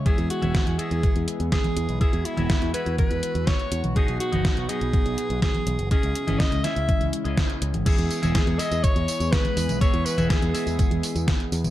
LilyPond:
<<
  \new Staff \with { instrumentName = "Alto saxophone" } { \time 4/4 \key e \major \tempo 4 = 123 gis'8 fis'4 gis'4 r8 gis'4 | gis'8 e'4 b'8 b'4 cis''8. r16 | gis'8 fis'4 gis'4. gis'4 | gis'4 dis''8 e''4 r4. |
gis'4. dis''8 cis''4 b'4 | cis''8 b'8 gis'2 r4 | }
  \new Staff \with { instrumentName = "Clean electric guitar" } { \time 4/4 \key e \major <e b e' gis' e''>8. <e b e' gis' e''>8. <e b e' gis' e''>2~ <e b e' gis' e''>8 | <e b e' gis' e''>8. <e b e' gis' e''>8. <e b e' gis' e''>2~ <e b e' gis' e''>8 | <b, b dis' fis' dis''>8. <b, b dis' fis' dis''>8. <b, b dis' fis' dis''>2~ <b, b dis' fis' dis''>8 | <cis cis' e' gis' dis''>8. <cis cis' e' gis' dis''>8. <cis cis' e' gis' e''>4~ <cis cis' e' gis' e''>16 <cis cis' e' gis' dis''>4~ <cis cis' e' gis' dis''>16 |
<e b e' gis' e''>8. <e b e' gis' e''>8. <e b e' gis' e''>2~ <e b e' gis' e''>8 | <e b e' gis' e''>8. <e b e' gis' e''>8. <e b e' gis' e''>2~ <e b e' gis' e''>8 | }
  \new Staff \with { instrumentName = "Analog synth pad" } { \time 4/4 \key e \major << { gis'1 | fis'1~ | fis'1 | e'1 |
gis'1~ | gis'1 | } \\ { <e gis b>1~ | <e gis b>1 | <fis b>1 | <gis cis'>1 |
<e gis b>1~ | <e gis b>1 | } >> }
  \new Staff \with { instrumentName = "Picked electric bass" } { \clef bass \time 4/4 \key e \major r16 e,16 r16 e,,16 r16 e,16 r16 e,16 r16 e,16 r16 e,16 r8 e,16 b,,16 | r16 e,16 r16 e,,16 r16 e,16 r16 e,16 r16 e,16 r16 e,16 r8 e,16 b,,16 | r16 b,,16 r16 fis,,16 r16 b,,16 r16 b,,16 r16 b,,16 r16 b,,16 r8 b,,16 fis,,16 | r16 cis,16 r16 gis,,16 r16 cis,16 r16 cis,16 r16 cis,16 r16 cis,16 r8 cis,16 gis,,16 |
r16 e,16 r16 e,,16 r16 e,16 r16 e,16 r16 e,16 r16 e,16 r8 e,16 b,,16 | r16 e,16 r16 e,,16 r16 e,16 r16 e,16 r16 e,16 r16 e,16 r8 e,16 b,,16 | }
  \new DrumStaff \with { instrumentName = "Drums" } \drummode { \time 4/4 <hh bd>16 hh16 hh16 <cgho hh>16 <hh bd sn>16 hh16 hh16 hh16 <hh bd>16 hh16 hh16 hh16 <hh bd sn>16 <cgho hh>16 hh16 hh16 | <hh bd>16 hh16 hh16 <cgho hh>16 <hh bd sn>16 hh16 hh16 hh16 <cgho hh bd>16 hh16 hh16 hh16 <hh bd sn>16 hh16 hh16 <cgho hh>16 | <hh bd>16 hh16 hh16 <cgho hh>16 <hh bd sn>16 hh16 hh16 hh16 <hh bd>16 hh16 hh16 hh16 <hh bd sn>16 <cgho hh>16 hh16 hh16 | <hh bd>16 hh16 hh16 <cgho hh>16 <hh bd sn>16 hh16 <hh sn>16 hh16 <cgho hh bd>16 hh16 hh16 hh16 <hh bd sn>16 hh16 hh16 <cgho hh>16 |
<cymc hh bd tamb>16 hh16 <hho tamb>16 <cgho hh tamb>16 <hh bd sn tamb>16 hh16 <hho tamb>16 <hh tamb>16 <hh bd tamb>16 hh16 <hho tamb>16 <hh tamb>16 <hh bd sn tamb>16 <cgho hh>16 <hho tamb>16 <cgho hh tamb>16 | <hh bd tamb>16 hh16 <hho tamb>16 <cgho hh tamb>16 <hh bd sn tamb>16 hh16 <hho tamb>16 <hho tamb>16 <cgho hh bd tamb>16 hh16 <hho tamb>16 <hh tamb>16 <hh bd sn tamb>16 hh16 <hho tamb>16 <cgho hh tamb>16 | }
>>